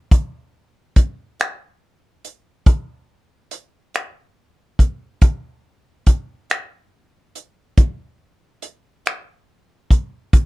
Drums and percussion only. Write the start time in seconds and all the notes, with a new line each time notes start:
0.11 kick, closed hi-hat
0.96 kick, closed hi-hat
1.39 finger snap, closed hi-hat
2.24 closed hi-hat
2.66 kick, closed hi-hat
3.51 closed hi-hat
3.94 finger snap, closed hi-hat
4.79 kick, closed hi-hat
5.21 kick, closed hi-hat
6.06 kick, closed hi-hat
6.50 finger snap, closed hi-hat
7.35 closed hi-hat
7.77 kick, closed hi-hat
8.62 closed hi-hat
9.06 finger snap, closed hi-hat
9.91 kick, closed hi-hat
10.33 kick, closed hi-hat